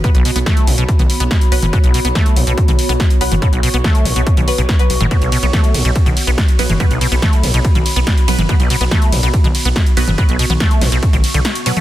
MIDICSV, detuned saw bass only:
0, 0, Header, 1, 2, 480
1, 0, Start_track
1, 0, Tempo, 422535
1, 47, Time_signature, 4, 2, 24, 8
1, 13412, End_track
2, 0, Start_track
2, 0, Title_t, "Detuned saw bass"
2, 0, Program_c, 0, 39
2, 166, Note_on_c, 0, 35, 78
2, 244, Note_off_c, 0, 35, 0
2, 405, Note_on_c, 0, 35, 84
2, 484, Note_off_c, 0, 35, 0
2, 765, Note_on_c, 0, 35, 93
2, 844, Note_off_c, 0, 35, 0
2, 886, Note_on_c, 0, 35, 86
2, 964, Note_off_c, 0, 35, 0
2, 1126, Note_on_c, 0, 35, 82
2, 1204, Note_off_c, 0, 35, 0
2, 1366, Note_on_c, 0, 35, 81
2, 1444, Note_off_c, 0, 35, 0
2, 1726, Note_on_c, 0, 35, 95
2, 1804, Note_off_c, 0, 35, 0
2, 1846, Note_on_c, 0, 30, 83
2, 1924, Note_off_c, 0, 30, 0
2, 2085, Note_on_c, 0, 35, 77
2, 2164, Note_off_c, 0, 35, 0
2, 2326, Note_on_c, 0, 35, 81
2, 2404, Note_off_c, 0, 35, 0
2, 2686, Note_on_c, 0, 35, 93
2, 2764, Note_off_c, 0, 35, 0
2, 2806, Note_on_c, 0, 35, 85
2, 2884, Note_off_c, 0, 35, 0
2, 3046, Note_on_c, 0, 35, 77
2, 3124, Note_off_c, 0, 35, 0
2, 3286, Note_on_c, 0, 35, 83
2, 3364, Note_off_c, 0, 35, 0
2, 3646, Note_on_c, 0, 35, 98
2, 3724, Note_off_c, 0, 35, 0
2, 3767, Note_on_c, 0, 30, 84
2, 3845, Note_off_c, 0, 30, 0
2, 4007, Note_on_c, 0, 35, 77
2, 4085, Note_off_c, 0, 35, 0
2, 4247, Note_on_c, 0, 35, 81
2, 4325, Note_off_c, 0, 35, 0
2, 4606, Note_on_c, 0, 35, 91
2, 4685, Note_off_c, 0, 35, 0
2, 4727, Note_on_c, 0, 35, 81
2, 4805, Note_off_c, 0, 35, 0
2, 4966, Note_on_c, 0, 35, 79
2, 5045, Note_off_c, 0, 35, 0
2, 5207, Note_on_c, 0, 35, 85
2, 5285, Note_off_c, 0, 35, 0
2, 5566, Note_on_c, 0, 35, 96
2, 5645, Note_off_c, 0, 35, 0
2, 5687, Note_on_c, 0, 30, 86
2, 5765, Note_off_c, 0, 30, 0
2, 5927, Note_on_c, 0, 35, 74
2, 6005, Note_off_c, 0, 35, 0
2, 6166, Note_on_c, 0, 35, 85
2, 6244, Note_off_c, 0, 35, 0
2, 6526, Note_on_c, 0, 35, 92
2, 6605, Note_off_c, 0, 35, 0
2, 6646, Note_on_c, 0, 35, 84
2, 6724, Note_off_c, 0, 35, 0
2, 6887, Note_on_c, 0, 35, 79
2, 6965, Note_off_c, 0, 35, 0
2, 7126, Note_on_c, 0, 35, 85
2, 7205, Note_off_c, 0, 35, 0
2, 7486, Note_on_c, 0, 35, 99
2, 7565, Note_off_c, 0, 35, 0
2, 7607, Note_on_c, 0, 30, 83
2, 7685, Note_off_c, 0, 30, 0
2, 7846, Note_on_c, 0, 35, 76
2, 7924, Note_off_c, 0, 35, 0
2, 8086, Note_on_c, 0, 35, 83
2, 8164, Note_off_c, 0, 35, 0
2, 8446, Note_on_c, 0, 35, 93
2, 8524, Note_off_c, 0, 35, 0
2, 8566, Note_on_c, 0, 35, 83
2, 8644, Note_off_c, 0, 35, 0
2, 8805, Note_on_c, 0, 35, 80
2, 8884, Note_off_c, 0, 35, 0
2, 9045, Note_on_c, 0, 35, 83
2, 9124, Note_off_c, 0, 35, 0
2, 9405, Note_on_c, 0, 35, 97
2, 9484, Note_off_c, 0, 35, 0
2, 9525, Note_on_c, 0, 30, 84
2, 9604, Note_off_c, 0, 30, 0
2, 9765, Note_on_c, 0, 35, 76
2, 9844, Note_off_c, 0, 35, 0
2, 10005, Note_on_c, 0, 35, 83
2, 10084, Note_off_c, 0, 35, 0
2, 10365, Note_on_c, 0, 35, 92
2, 10444, Note_off_c, 0, 35, 0
2, 10485, Note_on_c, 0, 35, 84
2, 10564, Note_off_c, 0, 35, 0
2, 10725, Note_on_c, 0, 35, 79
2, 10804, Note_off_c, 0, 35, 0
2, 10965, Note_on_c, 0, 35, 81
2, 11044, Note_off_c, 0, 35, 0
2, 11325, Note_on_c, 0, 35, 97
2, 11404, Note_off_c, 0, 35, 0
2, 11445, Note_on_c, 0, 30, 83
2, 11524, Note_off_c, 0, 30, 0
2, 11685, Note_on_c, 0, 35, 73
2, 11764, Note_off_c, 0, 35, 0
2, 11926, Note_on_c, 0, 35, 84
2, 12004, Note_off_c, 0, 35, 0
2, 12286, Note_on_c, 0, 35, 93
2, 12364, Note_off_c, 0, 35, 0
2, 12406, Note_on_c, 0, 35, 84
2, 12484, Note_off_c, 0, 35, 0
2, 12646, Note_on_c, 0, 33, 77
2, 12724, Note_off_c, 0, 33, 0
2, 12886, Note_on_c, 0, 35, 82
2, 12964, Note_off_c, 0, 35, 0
2, 13412, End_track
0, 0, End_of_file